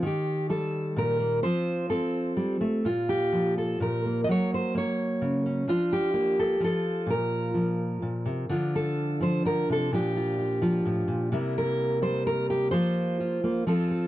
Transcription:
0.02 1.40 D#3 medium
0.02 0.50 G4 medium
0.49 1.40 G3 medium
0.49 0.97 A4 medium
0.96 1.41 A#2 medium
0.96 1.43 A#4 medium
1.20 1.43 A#3 soft
1.43 2.36 F3 medium
1.43 1.89 C4 soft
1.43 2.83 F4 soft
1.43 1.89 C5 loud
1.90 2.82 C4 medium
1.90 2.85 A4 medium
2.37 2.60 G3 medium
2.61 2.85 A3 medium
2.85 3.79 A#2 medium
2.85 3.57 F4 medium
3.09 3.57 G4 medium
3.32 4.27 F3 medium
3.58 3.81 A4 medium
3.80 4.25 A#2 medium
3.80 4.24 A#4 medium
4.05 4.73 A#3 soft
4.24 4.29 D#5 medium
4.29 5.66 F#3 medium
4.29 4.53 C#5 loud
4.54 4.76 C5 medium
4.75 5.65 A#3 medium
4.75 5.70 C#5 medium
5.21 5.65 C#3 medium
5.46 5.66 C#4 soft
5.68 6.60 F3 medium
5.68 6.38 D4 soft
5.68 6.13 F4 medium
5.93 6.62 G4 medium
6.14 6.60 A#3 medium
6.39 6.62 A4 medium
6.60 7.53 F3 medium
6.60 8.50 F4 soft
6.64 7.09 A4 loud
7.06 8.01 A#2 medium
7.06 8.51 A#4 loud
7.54 8.49 F3 medium
8.02 8.26 A#2 medium
8.25 8.49 C3 medium
8.49 9.44 D3 medium
8.49 9.20 F3 soft
8.49 9.89 D4 soft
8.49 9.90 F4 soft
8.76 9.22 A4 medium
9.20 9.91 F3 medium
9.20 9.45 C5 medium
9.45 9.69 D3 medium
9.45 9.69 A#4 medium
9.70 9.92 C3 medium
9.70 9.94 A4 medium
9.92 10.85 A#2 medium
9.92 10.60 F3 soft
9.92 11.31 D4 soft
9.92 10.15 F4 soft
9.92 11.34 G4 medium
10.16 10.37 F4 soft
10.38 10.61 F4 soft
10.62 11.32 F3 medium
10.62 11.30 F4 soft
10.85 11.07 A2 medium
11.08 11.32 A#2 medium
11.32 12.73 C3 medium
11.32 12.01 G3 soft
11.32 12.71 A#3 soft
11.32 12.71 E4 medium
11.32 11.57 A#4 soft
11.58 12.02 A#4 medium
12.02 12.70 G3 medium
12.02 12.26 C5 medium
12.27 12.50 A#4 loud
12.50 12.71 G4 medium
12.71 13.66 F3 medium
12.71 13.42 A#3 soft
12.71 13.20 F4 soft
12.71 13.66 C5 loud
13.20 13.44 F4 soft
13.44 13.67 A#3 medium
13.44 13.68 F4 soft
13.67 14.07 F3 medium
13.67 14.07 C4 medium
13.67 14.07 F4 medium
13.67 13.90 A4 medium
13.91 14.07 A4 medium

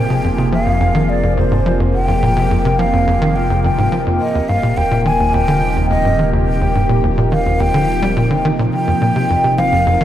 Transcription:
0.00 4.18 F1 medium
0.00 4.19 C3 medium
0.00 4.21 F3 medium
0.00 10.04 A#3 medium
0.00 4.20 D#4 medium
0.00 4.20 G#4 medium
0.00 0.49 G5 medium
0.10 0.20 C3 medium
0.24 0.30 F2 medium
0.38 0.52 C3 medium
0.52 0.59 F3 medium
0.52 1.11 F5 medium
0.66 0.80 F2 medium
0.80 0.91 F2 loud
0.95 1.08 D#3 loud
1.09 1.37 D5 medium
1.23 1.37 F2 medium
1.37 1.43 F2 medium
1.37 1.77 C5 medium
1.51 1.62 G#2 medium
1.66 1.72 F3 medium
1.80 1.93 F2 medium
1.94 2.81 G5 loud
2.08 2.14 F2 medium
2.23 2.33 A#2 medium
2.37 2.47 C3 medium
2.51 2.57 F2 medium
2.65 2.78 C3 medium
2.79 2.85 F3 medium
2.79 3.37 F5 loud
2.93 3.07 F2 medium
3.07 3.17 F2 loud
3.22 3.35 D#3 loud
3.36 3.63 G5 medium
3.50 3.63 F2 medium
3.64 3.70 F2 medium
3.64 4.03 G5 loud
3.78 3.88 G#2 medium
3.92 3.98 F3 medium
4.06 4.20 F2 medium
4.20 8.70 D#1 medium
4.20 10.04 C3 medium
4.20 4.50 D#5 loud
4.35 4.41 D#2 medium
4.49 4.59 G2 medium
4.49 4.79 F5 loud
4.63 4.73 A#2 medium
4.69 10.04 F3 medium
4.77 4.83 D#2 medium
4.77 5.05 G5 loud
4.84 10.04 D#4 medium
4.91 5.05 A#2 medium
5.05 5.12 D#3 medium
5.05 5.35 G#5 loud
5.20 5.33 D#2 medium
5.34 5.44 D#2 loud
5.34 5.89 G5 loud
5.48 5.61 D3 loud
5.55 8.73 G4 medium
5.76 5.90 D#2 medium
5.90 5.96 D#2 medium
5.90 6.30 D#5 loud
6.05 6.15 G2 medium
6.19 6.25 D#3 medium
6.33 6.46 D#2 medium
6.47 7.01 G5 medium
6.61 6.67 D#2 medium
6.75 6.85 G2 medium
6.89 6.99 A#2 medium
7.03 7.10 D#2 medium
7.18 7.31 A#2 medium
7.32 7.38 D#3 medium
7.32 7.62 F5 loud
7.46 7.59 D#2 medium
7.60 7.70 D#2 loud
7.60 8.45 G5 loud
7.74 7.88 D3 medium
8.02 8.13 G3 loud
8.16 8.30 A#2 medium
8.30 8.37 D3 medium
8.45 8.51 D#3 loud
8.59 8.69 A#2 medium
8.73 10.04 F1 medium
8.73 9.54 G5 loud
8.87 8.94 F2 medium
9.01 9.12 A#2 medium
9.16 9.26 C3 medium
9.30 9.36 F2 medium
9.44 9.57 C3 medium
9.58 9.64 F3 medium
9.58 10.04 F5 loud
9.72 9.86 F2 medium
9.87 9.97 F2 loud
10.01 10.04 D#3 loud

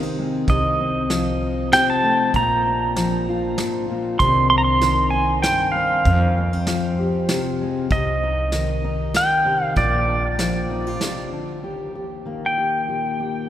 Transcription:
0.00 0.45 C3 medium
0.00 1.10 D#3 medium
0.00 0.49 C4 soft
0.00 1.41 D#4 medium
0.18 0.49 G#3 medium
0.48 1.68 C2 medium
0.48 1.11 C3 medium
0.48 1.69 D#5 medium
0.48 kick loud
0.48 closed hi-hat medium
0.80 1.72 C4 medium
1.10 2.31 F3 medium
1.10 snare medium
1.10 closed hi-hat soft
1.43 2.35 D#4 medium
1.72 2.31 C3 medium
1.72 2.31 C4 medium
1.72 1.89 G5 medium
1.72 snare medium
1.72 closed hi-hat medium
1.90 2.36 A5 medium
2.03 2.31 A3 medium
2.34 3.54 A#1 medium
2.34 3.88 A#2 medium
2.34 3.55 A#5 loud
2.34 kick medium
2.34 closed hi-hat medium
2.67 4.17 D4 medium
2.96 4.17 F3 medium
2.96 snare medium
2.96 closed hi-hat soft
3.29 4.17 F4 medium
3.58 3.90 G#2 medium
3.58 snare medium
3.58 closed hi-hat medium
3.90 4.20 A#2 medium
4.19 5.40 C2 medium
4.19 4.82 C3 medium
4.19 4.81 D#3 medium
4.19 5.75 C4 medium
4.19 4.51 D4 medium
4.19 5.12 D#4 medium
4.19 4.48 C6 loud
4.19 kick loud
4.19 closed hi-hat medium
4.50 5.42 D4 medium
4.50 4.57 C6 medium
4.58 4.64 A#5 medium
4.64 5.14 C6 loud
4.81 6.06 D#3 medium
4.81 snare medium
4.81 closed hi-hat soft
5.10 6.06 D#4 medium
5.10 5.42 G#5 medium
5.42 6.02 G2 medium
5.42 6.02 D4 medium
5.42 5.75 G5 medium
5.42 snare medium
5.42 closed hi-hat medium
5.72 6.41 C4 medium
5.72 6.93 F5 medium
6.05 7.26 F2 loud
6.05 7.88 F2 medium
6.05 kick loud
6.05 closed hi-hat medium
6.38 6.53 A#3 medium
6.53 7.29 C4 medium
6.67 7.88 F3 medium
6.67 snare medium
6.67 closed hi-hat soft
6.99 7.88 G4 medium
7.29 7.88 C3 medium
7.29 7.88 C4 medium
7.29 snare medium
7.29 closed hi-hat medium
7.61 7.92 G#3 medium
7.90 9.11 C2 medium
7.90 8.53 C3 medium
7.90 9.19 D#5 medium
7.90 kick loud
7.90 closed hi-hat medium
8.23 8.83 D#4 medium
8.52 9.77 D#3 medium
8.52 snare medium
8.52 closed hi-hat medium
8.84 9.77 D#4 medium
9.14 9.65 G5 loud
9.14 snare medium
9.14 closed hi-hat medium
9.45 9.77 C3 medium
9.65 9.80 F5 loud
9.76 10.97 A#1 loud
9.76 11.01 A#2 medium
9.76 11.28 D5 medium
9.76 kick loud
9.76 closed hi-hat medium
10.08 11.59 D4 medium
10.39 11.59 F3 medium
10.39 snare medium
10.39 closed hi-hat soft
10.71 10.87 D#4 medium
10.87 11.63 F4 medium
11.01 11.31 C3 medium
11.01 snare medium
11.01 closed hi-hat medium
11.32 11.63 D3 medium
11.63 13.49 D#2 medium
11.63 11.95 G4 medium
11.95 12.57 G4 soft
12.25 13.49 D#3 soft
12.25 13.46 A#3 soft
12.46 13.49 G5 medium
12.57 12.88 G4 soft
12.88 13.49 A#2 soft
12.88 13.19 G4 soft
13.20 13.46 G4 medium

